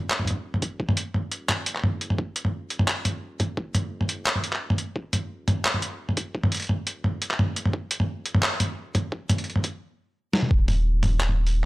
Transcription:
Already playing: sub bass D#1
0.10 clap
0.19 mid tom
0.25 closed hi-hat, mid tom
0.31 mid tom
0.45 sub bass D#1
0.54 mid tom
0.62 kick, closed hi-hat
0.80 kick
0.89 mid tom
0.97 closed hi-hat
1.14 sub bass D#1, mid tom
1.32 closed hi-hat
1.49 clap, mid tom
1.66 sub bass F#1, closed hi-hat
1.75 clap
1.84 mid tom
2.01 closed hi-hat
2.10 mid tom
2.18 sub bass D#1, kick
2.36 closed hi-hat
2.45 mid tom
2.70 closed hi-hat
2.79 mid tom
2.88 clap
3.05 closed hi-hat, mid tom
3.23 sub bass D#1
3.40 kick, closed hi-hat, mid tom
3.57 sub bass F#1, kick
3.74 closed hi-hat, mid tom
4.01 mid tom
4.09 closed hi-hat
4.26 sub bass D#1, clap
4.35 mid tom
4.44 closed hi-hat
4.53 clap
4.70 mid tom
4.78 closed hi-hat
4.96 sub bass D#1, kick
5.13 closed hi-hat, mid tom
5.48 closed hi-hat, mid tom
5.65 clap
5.74 mid tom
5.82 closed hi-hat
6.00 sub bass D#1
6.09 mid tom
6.17 kick, closed hi-hat
6.35 kick
6.44 mid tom
6.52 closed hi-hat
6.55 closed hi-hat
6.57 closed hi-hat
6.60 closed hi-hat
6.62 closed hi-hat
6.64 closed hi-hat
6.67 sub bass D#1, closed hi-hat, mid tom
6.87 closed hi-hat
7.04 mid tom
7.21 sub bass F#1, closed hi-hat
7.31 clap
7.39 mid tom
7.56 closed hi-hat
7.65 mid tom
7.73 sub bass D#1, kick
7.91 closed hi-hat
8.00 mid tom
8.26 closed hi-hat
8.34 mid tom
8.43 clap
8.60 closed hi-hat, mid tom
8.77 sub bass D#1
8.95 kick, closed hi-hat, mid tom
9.12 sub bass D#1, kick
9.29 closed hi-hat, mid tom
9.38 closed hi-hat
9.44 closed hi-hat
9.50 closed hi-hat
9.56 mid tom
9.64 kick, closed hi-hat
10.33 snare
10.42 mid tom
10.51 sub bass D#1, kick
10.68 mid tom, open hi-hat
11.03 mid tom, open hi-hat
11.20 sub bass D#1, clap, open hi-hat
11.29 mid tom
11.47 open hi-hat

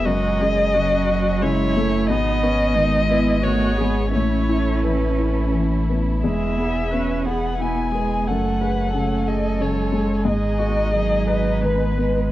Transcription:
Already playing: string section G#4
0.05 sub bass F#1, upright piano F#2, string section F#3 C#4, cello G#3, viola F#4, violin D#5
0.41 upright piano C#4, viola G#4
0.74 upright piano C#3, cello F#3, viola F#4
1.09 upright piano C#4
1.41 upright piano C#3, cello G#3, viola E4, violin C#5
1.76 cello A3, upright piano A3
2.08 sub bass G#1, upright piano B2, string section B3 D#5, cello B3, viola D#4, violin D#5
2.43 upright piano B3, viola C#4
2.75 upright piano D#3, cello G#3, viola D#4
3.09 upright piano B3, viola E4
3.43 upright piano D#3, cello A3, viola F#4, violin C#5
3.77 upright piano G#3, cello B3, viola G#4
4.13 sub bass A1, upright piano A2, cello C#4, string section C#4 E4 A4, viola E4, violin C#5
4.49 upright piano E4
4.83 upright piano E3, violin B4
5.19 upright piano E4
5.53 upright piano E3
5.89 upright piano B3
6.21 sub bass E1, upright piano E2, cello G#3, string section B3 G#5, viola G#4, violin E5
6.57 cello B3, upright piano G#4
6.91 upright piano B2, cello C#4, viola B4
7.25 cello B3, viola G#4, upright piano G#4, violin F#5
7.59 upright piano B2, cello B3, viola E4, violin G#5
7.92 cello G#3, upright piano B3, viola G#4
8.27 sub bass F#1, upright piano F#2, string section F#3 C#4, cello A3, viola A4, violin F#5
8.61 upright piano G#4, viola B4
8.93 upright piano C#3, cello A3, viola A4
9.28 upright piano G#4, violin D#5
9.59 upright piano C#3, cello G#3, violin C#5
9.92 upright piano G#3
10.25 sub bass G#1, upright piano G#2, string section B3 D#4, viola G#4, violin D#5
10.59 viola F#4, upright piano G#4
10.92 upright piano D#3, cello F#3, viola G#4
11.26 upright piano G#4, viola B4
11.62 upright piano D#3, cello G#3, violin B4
11.98 cello G#3, upright piano B3

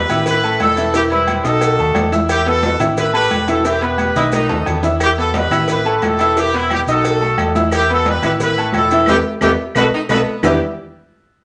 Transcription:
Already playing: horn section G4 B4
0.09 fingered electric bass A1, grand piano E4 E5 E6, cowbell, high conga, low conga, low agogo, maracas
0.26 horn section E4 B4, cowbell, high conga, low conga, low agogo, maracas
0.44 grand piano A3 A4 A5, high conga, low agogo, maracas
0.59 fingered electric bass E1, horn section E4 A4, cowbell, high conga, low agogo, maracas
0.77 grand piano E3 E4 E5, cowbell, high conga, low agogo, maracas
0.94 grand piano E3 E4 E5, horn section E4 G4, cowbell, high conga, maracas
1.10 grand piano G3 B4 B5, horn section C4 E4, high conga, low agogo, maracas
1.27 cowbell, high conga, low agogo, maracas
1.44 fingered electric bass B1, grand piano D#4 D#5 D#6, horn section F#4 A4, cowbell, maracas
1.61 cowbell, high conga, low agogo, maracas
1.78 fingered electric bass D#2, grand piano A3 A4 A5, high conga, maracas
1.95 fingered electric bass E2, cowbell, high conga, low timbale, low agogo, maracas
2.12 grand piano E4 E5 E6, high conga, low agogo, maracas
2.29 horn section E4 G4, cowbell, high conga, low agogo, maracas
2.46 grand piano B3 B4 B5, horn section F#4 A4, high conga, low agogo, maracas
2.63 cowbell, high conga, maracas
2.79 fingered electric bass A1, grand piano E4 E5 E6, cowbell, high conga, low conga, low agogo, maracas
2.97 horn section E4 B4, cowbell, high conga, low conga, low agogo, maracas
3.13 grand piano A3 A4 A5, horn section G4 B4, high conga, low agogo, maracas
3.31 fingered electric bass E1, cowbell, high conga, low agogo, maracas
3.48 grand piano E3 E4 E5, horn section F#4 A4, cowbell, high conga, low agogo, maracas
3.64 grand piano E3 E4 E5, horn section E4 G4, cowbell, high conga, maracas
3.81 grand piano B3 B4 B5, horn section G4 B4, high conga, low agogo, maracas
3.98 cowbell, high conga, low agogo, maracas
4.15 fingered electric bass B1, grand piano D#4 D#5 D#6, saxophone section E4, cowbell, low conga, maracas
4.32 saxophone section D#4, cowbell, high conga, low agogo, maracas
4.49 fingered electric bass D#2, grand piano A3 A4 A5, low conga, maracas
4.66 fingered electric bass E2, saxophone section B3, cowbell, low conga, low agogo, maracas
4.83 grand piano E4 E5 E6, low conga, low agogo, maracas
5.00 horn section E4 G4, cowbell, high conga, low agogo, claves, maracas
5.17 grand piano B3 B4 B5, horn section F#4 A4, high conga, low agogo, maracas
5.34 horn section G4 B4, cowbell, high conga, maracas
5.50 fingered electric bass A1, grand piano E4 E5 E6, cowbell, high conga, low conga, low agogo, claves, maracas
5.68 horn section E4 B4, cowbell, high conga, low conga, low agogo, maracas
5.85 grand piano A3 A4 A5, high conga, low agogo, maracas
5.97 horn section B4
6.02 fingered electric bass E1, horn section E4 A4, cowbell, high conga, low agogo, claves, maracas
6.19 grand piano E3 E4 E5, cowbell, high conga, low agogo, maracas
6.36 grand piano E3 E4 E5, horn section E4 G4, cowbell, high conga, maracas
6.54 grand piano B3 B4 B5, horn section C4 E4, high conga, low agogo, maracas
6.70 horn section E4 G4, cowbell, high conga, low agogo, claves, maracas
6.86 fingered electric bass B1, grand piano D#4 D#5 D#6, horn section F#4, cowbell, maracas
6.91 horn section A4
7.04 cowbell, high conga, low agogo, maracas
7.21 grand piano A3 A4 A5, high conga, maracas
7.38 fingered electric bass E2, cowbell, high conga, low agogo, claves, maracas
7.55 grand piano E4 E5 E6, high conga, low agogo, maracas
7.72 horn section E4 G4, cowbell, high conga, low agogo, claves, maracas
7.89 grand piano B3 B4 B5, horn section F#4 A4, high conga, low agogo, maracas
8.06 horn section G4 B4, cowbell, high conga, maracas
8.22 fingered electric bass A1, grand piano E4 E5 E6, horn section G4 B4, cowbell, high conga, low conga, low agogo, claves, maracas
8.40 horn section E4 B4, cowbell, high conga, low conga, low agogo, maracas
8.58 grand piano A3 A4 A5, low agogo, maracas
8.73 fingered electric bass E1, horn section E4, cowbell, high conga, low agogo, claves, maracas
8.77 horn section A4
8.90 grand piano E3 E4 E5, cowbell, high conga, low agogo, maracas
9.06 fingered electric bass E2, horn section B3 E4 G4, grand piano G4 B4 E5, cowbell, high conga, high timbale, claves, maracas
9.41 fingered electric bass E2, horn section B3 E4 G4, grand piano G4 B4 E5, cowbell, high conga, high timbale, claves, maracas
9.75 fingered electric bass B1, horn section F#4 A4 B4, grand piano A4 B4 D#5, cowbell, high conga, high timbale, claves, maracas
9.94 saxophone section D#4
10.09 fingered electric bass B1, saxophone section B3, horn section F#4 A4 B4, grand piano A4 B4 D#5, cowbell, high conga, high timbale, claves, maracas
10.43 fingered electric bass E2, grand piano E3 B3 E4 G4 B4 E5, saxophone section B3, horn section G4, low bongo, low conga, low timbale, claves, maracas

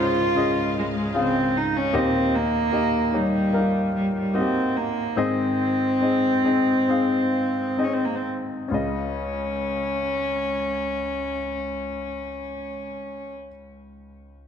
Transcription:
Already playing: grand piano C#2 G#2 C#4 F4 G#4 A#4 C5 F5, string section C#3 G#4 D#5 F5, cello F4
0.35 grand piano C#4 F4 G#4 D#5
0.79 cello G#3
0.96 cello G#3
1.14 grand piano C#3 F4 G#4 F5, cello C4
1.57 cello D#4
1.77 cello C#4
1.93 grand piano D#2 A#2 A#3 D#4 G4 D#5, cello C4
2.35 cello A#3
2.72 grand piano A#3 D#4 G4 D#5
3.12 cello G3, grand piano A#3 D#4 G4 C#5
3.52 grand piano A#3 D#4 F4 A#4
3.60 grand piano G4
3.95 cello G3
4.15 cello G3
4.33 grand piano A#3 D#4 F#4 D#5, cello C4
4.41 grand piano G4
4.77 cello A#3
5.16 grand piano G#2 D#3 C4 D#4 G#4 D#5, cello C4
6.01 grand piano C4 D#4 G#4 D#5
6.43 grand piano C4 D#4 G#4 D#5
6.88 grand piano C4 D#4 G#4 F5
7.77 grand piano C4 D#4 G#4 D#5
7.84 cello C#4
7.94 cello C4
8.05 cello A#3
8.16 cello C4
8.68 grand piano C#2 C#4 F4
8.72 cello C#4, grand piano G#4 D#5

